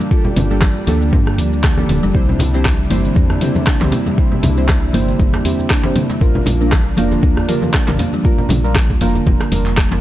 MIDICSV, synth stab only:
0, 0, Header, 1, 2, 480
1, 0, Start_track
1, 0, Tempo, 508475
1, 106, Time_signature, 4, 2, 24, 8
1, 9448, End_track
2, 0, Start_track
2, 0, Title_t, "Synth stab"
2, 0, Program_c, 0, 62
2, 101, Note_on_c, 0, 58, 80
2, 101, Note_on_c, 0, 62, 77
2, 102, Note_on_c, 0, 67, 76
2, 103, Note_on_c, 0, 69, 98
2, 312, Note_off_c, 0, 58, 0
2, 312, Note_off_c, 0, 62, 0
2, 312, Note_off_c, 0, 67, 0
2, 313, Note_off_c, 0, 69, 0
2, 475, Note_on_c, 0, 58, 98
2, 475, Note_on_c, 0, 69, 99
2, 476, Note_on_c, 0, 67, 84
2, 477, Note_on_c, 0, 62, 88
2, 592, Note_off_c, 0, 58, 0
2, 592, Note_off_c, 0, 69, 0
2, 593, Note_off_c, 0, 62, 0
2, 593, Note_off_c, 0, 67, 0
2, 824, Note_on_c, 0, 58, 86
2, 824, Note_on_c, 0, 62, 77
2, 824, Note_on_c, 0, 67, 82
2, 824, Note_on_c, 0, 69, 94
2, 1279, Note_off_c, 0, 58, 0
2, 1279, Note_off_c, 0, 62, 0
2, 1279, Note_off_c, 0, 67, 0
2, 1279, Note_off_c, 0, 69, 0
2, 1676, Note_on_c, 0, 58, 86
2, 1676, Note_on_c, 0, 67, 78
2, 1677, Note_on_c, 0, 62, 78
2, 1677, Note_on_c, 0, 69, 95
2, 1878, Note_off_c, 0, 58, 0
2, 1878, Note_off_c, 0, 62, 0
2, 1878, Note_off_c, 0, 67, 0
2, 1878, Note_off_c, 0, 69, 0
2, 2027, Note_on_c, 0, 64, 80
2, 2027, Note_on_c, 0, 67, 78
2, 2027, Note_on_c, 0, 72, 95
2, 2028, Note_on_c, 0, 60, 86
2, 2234, Note_off_c, 0, 64, 0
2, 2234, Note_off_c, 0, 67, 0
2, 2235, Note_off_c, 0, 60, 0
2, 2235, Note_off_c, 0, 72, 0
2, 2400, Note_on_c, 0, 67, 87
2, 2400, Note_on_c, 0, 72, 104
2, 2401, Note_on_c, 0, 60, 93
2, 2401, Note_on_c, 0, 64, 88
2, 2515, Note_off_c, 0, 60, 0
2, 2515, Note_off_c, 0, 64, 0
2, 2515, Note_off_c, 0, 67, 0
2, 2515, Note_off_c, 0, 72, 0
2, 2747, Note_on_c, 0, 72, 96
2, 2748, Note_on_c, 0, 60, 86
2, 2748, Note_on_c, 0, 64, 78
2, 2748, Note_on_c, 0, 67, 78
2, 3200, Note_off_c, 0, 72, 0
2, 3201, Note_off_c, 0, 60, 0
2, 3201, Note_off_c, 0, 64, 0
2, 3201, Note_off_c, 0, 67, 0
2, 3228, Note_on_c, 0, 72, 101
2, 3229, Note_on_c, 0, 60, 89
2, 3229, Note_on_c, 0, 64, 88
2, 3230, Note_on_c, 0, 67, 85
2, 3435, Note_off_c, 0, 60, 0
2, 3435, Note_off_c, 0, 72, 0
2, 3436, Note_off_c, 0, 64, 0
2, 3436, Note_off_c, 0, 67, 0
2, 3601, Note_on_c, 0, 64, 70
2, 3601, Note_on_c, 0, 72, 82
2, 3602, Note_on_c, 0, 60, 78
2, 3602, Note_on_c, 0, 67, 70
2, 3715, Note_off_c, 0, 64, 0
2, 3715, Note_off_c, 0, 72, 0
2, 3716, Note_off_c, 0, 60, 0
2, 3716, Note_off_c, 0, 67, 0
2, 3946, Note_on_c, 0, 64, 79
2, 3947, Note_on_c, 0, 67, 79
2, 3947, Note_on_c, 0, 72, 92
2, 3948, Note_on_c, 0, 60, 86
2, 4154, Note_off_c, 0, 64, 0
2, 4154, Note_off_c, 0, 67, 0
2, 4155, Note_off_c, 0, 60, 0
2, 4155, Note_off_c, 0, 72, 0
2, 4317, Note_on_c, 0, 60, 94
2, 4318, Note_on_c, 0, 64, 88
2, 4318, Note_on_c, 0, 67, 84
2, 4318, Note_on_c, 0, 72, 101
2, 4433, Note_off_c, 0, 60, 0
2, 4433, Note_off_c, 0, 64, 0
2, 4433, Note_off_c, 0, 72, 0
2, 4434, Note_off_c, 0, 67, 0
2, 4663, Note_on_c, 0, 60, 86
2, 4663, Note_on_c, 0, 64, 76
2, 4663, Note_on_c, 0, 72, 91
2, 4664, Note_on_c, 0, 67, 76
2, 5118, Note_off_c, 0, 60, 0
2, 5118, Note_off_c, 0, 64, 0
2, 5118, Note_off_c, 0, 72, 0
2, 5119, Note_off_c, 0, 67, 0
2, 5143, Note_on_c, 0, 72, 97
2, 5144, Note_on_c, 0, 60, 95
2, 5144, Note_on_c, 0, 64, 83
2, 5145, Note_on_c, 0, 67, 84
2, 5352, Note_off_c, 0, 72, 0
2, 5353, Note_off_c, 0, 60, 0
2, 5353, Note_off_c, 0, 64, 0
2, 5353, Note_off_c, 0, 67, 0
2, 5518, Note_on_c, 0, 67, 70
2, 5519, Note_on_c, 0, 60, 76
2, 5519, Note_on_c, 0, 64, 71
2, 5519, Note_on_c, 0, 72, 85
2, 5634, Note_off_c, 0, 60, 0
2, 5634, Note_off_c, 0, 64, 0
2, 5634, Note_off_c, 0, 67, 0
2, 5634, Note_off_c, 0, 72, 0
2, 5864, Note_on_c, 0, 58, 85
2, 5864, Note_on_c, 0, 65, 81
2, 5864, Note_on_c, 0, 70, 95
2, 5865, Note_on_c, 0, 62, 76
2, 6073, Note_off_c, 0, 58, 0
2, 6073, Note_off_c, 0, 65, 0
2, 6073, Note_off_c, 0, 70, 0
2, 6074, Note_off_c, 0, 62, 0
2, 6236, Note_on_c, 0, 65, 86
2, 6236, Note_on_c, 0, 70, 105
2, 6237, Note_on_c, 0, 58, 94
2, 6238, Note_on_c, 0, 62, 88
2, 6353, Note_off_c, 0, 58, 0
2, 6353, Note_off_c, 0, 65, 0
2, 6353, Note_off_c, 0, 70, 0
2, 6354, Note_off_c, 0, 62, 0
2, 6585, Note_on_c, 0, 65, 80
2, 6585, Note_on_c, 0, 70, 95
2, 6586, Note_on_c, 0, 62, 81
2, 6587, Note_on_c, 0, 58, 88
2, 7040, Note_off_c, 0, 62, 0
2, 7040, Note_off_c, 0, 65, 0
2, 7040, Note_off_c, 0, 70, 0
2, 7041, Note_off_c, 0, 58, 0
2, 7063, Note_on_c, 0, 62, 80
2, 7063, Note_on_c, 0, 70, 99
2, 7064, Note_on_c, 0, 58, 91
2, 7064, Note_on_c, 0, 65, 83
2, 7273, Note_off_c, 0, 58, 0
2, 7273, Note_off_c, 0, 62, 0
2, 7273, Note_off_c, 0, 65, 0
2, 7273, Note_off_c, 0, 70, 0
2, 7435, Note_on_c, 0, 58, 77
2, 7435, Note_on_c, 0, 62, 74
2, 7435, Note_on_c, 0, 65, 69
2, 7435, Note_on_c, 0, 70, 85
2, 7552, Note_off_c, 0, 58, 0
2, 7552, Note_off_c, 0, 62, 0
2, 7552, Note_off_c, 0, 65, 0
2, 7552, Note_off_c, 0, 70, 0
2, 7785, Note_on_c, 0, 58, 84
2, 7785, Note_on_c, 0, 62, 78
2, 7785, Note_on_c, 0, 65, 79
2, 7785, Note_on_c, 0, 70, 98
2, 7993, Note_off_c, 0, 58, 0
2, 7994, Note_off_c, 0, 62, 0
2, 7994, Note_off_c, 0, 65, 0
2, 7994, Note_off_c, 0, 70, 0
2, 8156, Note_on_c, 0, 65, 90
2, 8156, Note_on_c, 0, 70, 107
2, 8157, Note_on_c, 0, 58, 99
2, 8157, Note_on_c, 0, 62, 92
2, 8273, Note_off_c, 0, 58, 0
2, 8273, Note_off_c, 0, 62, 0
2, 8273, Note_off_c, 0, 65, 0
2, 8273, Note_off_c, 0, 70, 0
2, 8507, Note_on_c, 0, 62, 78
2, 8507, Note_on_c, 0, 65, 79
2, 8508, Note_on_c, 0, 58, 85
2, 8509, Note_on_c, 0, 70, 97
2, 8961, Note_off_c, 0, 58, 0
2, 8961, Note_off_c, 0, 62, 0
2, 8961, Note_off_c, 0, 65, 0
2, 8961, Note_off_c, 0, 70, 0
2, 8988, Note_on_c, 0, 62, 85
2, 8989, Note_on_c, 0, 58, 90
2, 8989, Note_on_c, 0, 65, 81
2, 8989, Note_on_c, 0, 70, 100
2, 9195, Note_off_c, 0, 58, 0
2, 9195, Note_off_c, 0, 62, 0
2, 9195, Note_off_c, 0, 65, 0
2, 9195, Note_off_c, 0, 70, 0
2, 9363, Note_on_c, 0, 65, 73
2, 9364, Note_on_c, 0, 58, 78
2, 9364, Note_on_c, 0, 62, 71
2, 9364, Note_on_c, 0, 70, 88
2, 9448, Note_off_c, 0, 58, 0
2, 9448, Note_off_c, 0, 62, 0
2, 9448, Note_off_c, 0, 65, 0
2, 9448, Note_off_c, 0, 70, 0
2, 9448, End_track
0, 0, End_of_file